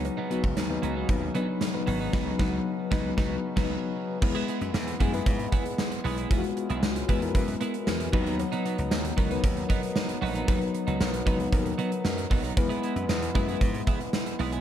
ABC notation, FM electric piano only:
X:1
M:4/4
L:1/16
Q:1/4=115
K:E
V:1 name="FM electric piano"
[F,B,DB]2 [F,B,DF]3 [F,B,DB]3 [F,B,DB]2 [F,B,=D^DB]3 [F,B,DB]3 | [F,B,DB]2 [F,B,DB]2 z2 [F,B,DB]2 [F,B,DB]2 z [F,B,DB]2 z3 | [G,B,EB]6 [G,B,EG] [G,B,EB]6- [G,B,EB] z2 | [G,B,E^EF]6 [G,B,=EB] [G,B,E^A] [G,B,EB]6 [F,B,DB]2- |
[F,B,DB]4- [F,B,DB] z [F,B,D^A] [F,B,DB]6- [F,B,DB] z2 | [F,B,DB]6 [F,B,DB] [F,B,DB] [F,B,D^A]6- [F,B,DA] z | [G,B,EB]6 [G,B,EB] [G,B,EB]6- [G,B,EB] z2 |]